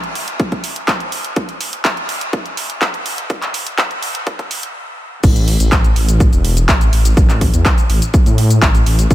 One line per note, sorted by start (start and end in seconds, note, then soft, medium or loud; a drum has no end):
0.04 closed hi-hat soft
0.15 open hi-hat medium
0.28 closed hi-hat medium
0.40 kick loud
0.40 closed hi-hat medium
0.52 kick medium
0.52 closed hi-hat soft
0.64 open hi-hat loud
0.76 closed hi-hat medium
0.88 kick loud
0.88 clap loud
0.88 closed hi-hat medium
1.00 closed hi-hat soft
1.12 open hi-hat medium
1.25 closed hi-hat medium
1.36 kick loud
1.36 closed hi-hat medium
1.49 closed hi-hat soft
1.61 open hi-hat loud
1.73 closed hi-hat medium
1.85 kick loud
1.85 clap loud
1.85 closed hi-hat medium
1.97 closed hi-hat soft
2.09 open hi-hat medium
2.21 closed hi-hat medium
2.33 kick loud
2.33 closed hi-hat medium
2.46 closed hi-hat soft
2.57 open hi-hat loud
2.70 closed hi-hat medium
2.82 kick loud
2.82 clap loud
2.82 closed hi-hat medium
2.94 closed hi-hat soft
3.06 open hi-hat medium
3.18 closed hi-hat medium
3.30 kick loud
3.30 closed hi-hat medium
3.42 clap soft
3.42 closed hi-hat soft
3.54 open hi-hat loud
3.67 closed hi-hat medium
3.78 kick loud
3.78 clap loud
3.78 closed hi-hat medium
3.91 closed hi-hat soft
4.03 open hi-hat medium
4.15 closed hi-hat medium
4.27 kick loud
4.27 closed hi-hat medium
4.39 kick medium
4.39 closed hi-hat soft
4.51 open hi-hat loud
4.63 closed hi-hat medium
5.24 5.57 A1 loud
5.24 kick loud
5.24 closed hi-hat medium
5.24 crash loud
5.24 shaker medium
5.36 closed hi-hat soft
5.36 shaker soft
5.48 open hi-hat loud
5.60 5.93 A1 loud
5.60 closed hi-hat medium
5.60 shaker medium
5.72 kick loud
5.72 clap loud
5.72 closed hi-hat medium
5.72 shaker medium
5.84 closed hi-hat soft
5.84 shaker soft
5.96 6.29 A1 medium
5.96 open hi-hat medium
6.09 closed hi-hat medium
6.09 shaker medium
6.20 kick loud
6.20 closed hi-hat medium
6.20 shaker medium
6.33 6.65 E1 loud
6.33 closed hi-hat soft
6.33 shaker soft
6.45 open hi-hat loud
6.57 closed hi-hat medium
6.57 shaker medium
6.69 6.89 A1 loud
6.69 kick loud
6.69 clap loud
6.69 closed hi-hat medium
6.69 shaker medium
6.81 closed hi-hat soft
6.81 shaker soft
6.93 7.13 A1 loud
6.93 open hi-hat medium
7.05 closed hi-hat medium
7.05 shaker medium
7.17 7.50 A1 medium
7.17 kick loud
7.17 closed hi-hat medium
7.17 shaker medium
7.29 clap soft
7.29 closed hi-hat soft
7.29 shaker soft
7.41 kick medium
7.41 open hi-hat loud
7.54 7.63 E2 loud
7.54 closed hi-hat medium
7.54 shaker medium
7.65 kick loud
7.65 clap loud
7.65 closed hi-hat medium
7.65 shaker medium
7.78 closed hi-hat soft
7.78 shaker soft
7.90 8.00 A1 loud
7.90 open hi-hat loud
8.02 closed hi-hat medium
8.02 shaker medium
8.14 kick loud
8.14 closed hi-hat medium
8.14 shaker medium
8.26 8.59 A2 medium
8.26 closed hi-hat soft
8.26 shaker soft
8.38 open hi-hat loud
8.50 closed hi-hat medium
8.50 shaker medium
8.62 8.82 A1 medium
8.62 kick loud
8.62 clap loud
8.62 closed hi-hat medium
8.62 shaker medium
8.75 closed hi-hat soft
8.75 shaker soft
8.86 9.06 A1 medium
8.86 open hi-hat loud
8.99 closed hi-hat medium
8.99 shaker medium
9.11 9.15 A1 loud
9.11 kick loud
9.11 closed hi-hat medium
9.11 shaker medium